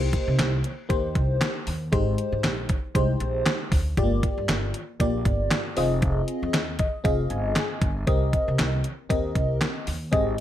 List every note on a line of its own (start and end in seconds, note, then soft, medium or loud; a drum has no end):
0.00 0.48 A#3 medium
0.00 0.48 D#4 medium
0.00 0.49 G4 medium
0.00 0.49 C5 medium
0.13 kick medium
0.13 closed hi-hat medium
0.27 0.37 C3 medium
0.39 0.60 C2 loud
0.39 snare loud
0.39 clap medium
0.39 closed hi-hat medium
0.64 closed hi-hat medium
0.89 1.11 D#2 loud
0.89 1.51 A#3 medium
0.89 1.51 D#4 medium
0.89 1.51 G4 medium
0.89 1.51 C5 medium
0.89 kick loud
0.89 closed hi-hat medium
1.15 1.37 C2 medium
1.15 kick medium
1.15 closed hi-hat medium
1.41 snare loud
1.41 clap medium
1.41 closed hi-hat medium
1.67 1.88 D#2 loud
1.67 open hi-hat medium
1.92 2.14 G#1 loud
1.92 2.54 G#3 medium
1.92 2.54 D#4 medium
1.92 2.54 G4 medium
1.92 2.54 C5 medium
1.92 kick loud
1.92 closed hi-hat medium
2.18 closed hi-hat medium
2.32 2.42 G#2 medium
2.44 2.65 A#1 medium
2.44 snare loud
2.44 clap medium
2.44 closed hi-hat medium
2.69 kick medium
2.69 closed hi-hat medium
2.95 3.16 C2 loud
2.95 3.56 G#3 medium
2.95 3.56 D#4 medium
2.95 3.56 G4 medium
2.95 3.56 C5 medium
2.95 kick loud
2.95 closed hi-hat loud
3.20 3.42 A#1 medium
3.20 closed hi-hat medium
3.46 snare loud
3.46 clap medium
3.46 closed hi-hat medium
3.72 3.93 D2 medium
3.72 kick medium
3.72 open hi-hat medium
3.97 4.19 G1 loud
3.97 4.04 G#3 medium
3.97 4.59 F4 medium
3.97 4.59 G4 medium
3.97 4.59 D5 medium
3.97 kick loud
3.97 closed hi-hat medium
4.04 4.62 A#3 medium
4.23 kick medium
4.23 closed hi-hat medium
4.38 4.47 G2 medium
4.49 4.70 G1 medium
4.49 snare loud
4.49 clap medium
4.49 closed hi-hat medium
4.74 closed hi-hat medium
5.00 5.21 A#1 loud
5.00 5.61 A#3 medium
5.00 5.61 F4 medium
5.00 5.62 G4 medium
5.00 5.62 D5 medium
5.00 kick loud
5.00 closed hi-hat loud
5.25 5.47 G1 medium
5.25 kick medium
5.25 closed hi-hat medium
5.51 snare loud
5.51 clap medium
5.51 closed hi-hat medium
5.77 6.20 F1 medium
5.77 6.59 C4 medium
5.77 6.59 F4 medium
5.77 6.60 G#4 medium
5.77 6.60 D#5 medium
5.77 open hi-hat medium
6.02 kick loud
6.02 closed hi-hat medium
6.28 closed hi-hat medium
6.43 6.54 F2 loud
6.54 6.76 D#2 medium
6.54 snare loud
6.54 clap medium
6.54 closed hi-hat medium
6.79 7.03 D#5 medium
6.79 kick medium
6.79 closed hi-hat medium
7.04 7.26 F1 medium
7.04 7.66 C4 medium
7.04 7.66 F4 medium
7.04 7.66 G#4 medium
7.04 7.66 D#5 medium
7.04 7.29 F5 medium
7.04 kick loud
7.04 closed hi-hat medium
7.30 7.52 G1 medium
7.30 7.54 G#5 medium
7.30 closed hi-hat medium
7.56 8.04 G#5 medium
7.56 snare loud
7.56 clap medium
7.56 closed hi-hat medium
7.82 8.03 G1 medium
7.82 kick medium
7.82 closed hi-hat medium
8.07 8.29 C2 medium
8.07 8.69 C4 medium
8.07 8.69 G4 medium
8.07 8.69 A#4 medium
8.07 8.69 D#5 medium
8.07 kick loud
8.07 closed hi-hat medium
8.33 kick medium
8.33 closed hi-hat medium
8.48 8.57 C3 medium
8.59 8.81 C2 loud
8.59 snare loud
8.59 clap medium
8.59 closed hi-hat medium
8.84 closed hi-hat medium
9.09 9.32 D#2 loud
9.09 9.71 C4 medium
9.09 9.71 G4 medium
9.09 9.71 A#4 medium
9.09 9.72 D#5 medium
9.09 kick loud
9.09 closed hi-hat medium
9.35 9.57 C2 medium
9.35 kick medium
9.35 closed hi-hat medium
9.61 snare loud
9.61 clap medium
9.61 closed hi-hat medium
9.87 10.09 D#2 medium
9.87 open hi-hat medium
10.12 10.34 G#1 loud
10.12 10.40 C4 medium
10.12 10.40 G4 medium
10.12 10.40 G#4 medium
10.12 10.40 D#5 medium
10.12 kick loud
10.12 closed hi-hat medium